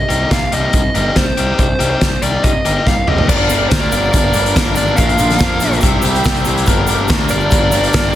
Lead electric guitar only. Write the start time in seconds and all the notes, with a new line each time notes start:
Already playing: D#5
0.32 F5
0.53 D#5
0.75 D#5
1.17 C5
1.60 C5
1.91 C5
2.23 D5
2.44 D#5
2.87 F5
3.08 D#5
3.29 D5
3.38 D5
3.69 C5
3.81 D5
4.13 D5
4.77 D5
4.96 F5
7.31 D5